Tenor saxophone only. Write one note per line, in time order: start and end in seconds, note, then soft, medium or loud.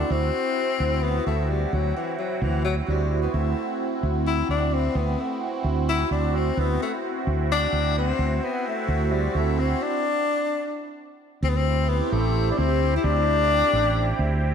0.00 0.13 D4 medium
0.11 1.05 C4 loud
1.03 1.26 B3 medium
1.27 1.52 A3 medium
1.50 1.75 G3 medium
1.73 1.96 F#3 medium
1.97 2.17 E3 medium
2.19 2.44 F#3 medium
2.42 2.64 E3 medium
2.65 2.75 F#3 medium
2.88 3.20 G3 medium
3.22 3.33 B3 medium
3.34 3.95 A3 medium
4.28 4.48 E4 medium
4.50 4.75 D4 medium
4.74 4.98 C4 medium
4.96 5.21 B3 medium
5.20 5.42 A3 medium
5.89 6.10 E4 medium
6.12 6.37 D4 medium
6.36 6.61 C4 medium
6.59 6.81 B3 medium
6.82 6.92 A3 medium
7.52 7.94 D4 loud
7.98 8.45 C4 loud
8.44 8.69 B3 medium
8.67 9.14 A3 medium
9.12 9.38 G3 medium
9.37 9.60 A3 medium
9.59 9.84 C4 medium
9.82 10.97 D4 medium
11.44 11.51 C4 medium
11.50 11.58 B3 medium
11.57 11.90 C4 medium
11.89 12.14 B3 medium
12.12 12.51 A3 medium
12.51 12.59 D4 medium
12.57 12.96 C4 medium
12.97 13.06 E4 medium
13.04 14.43 D4 loud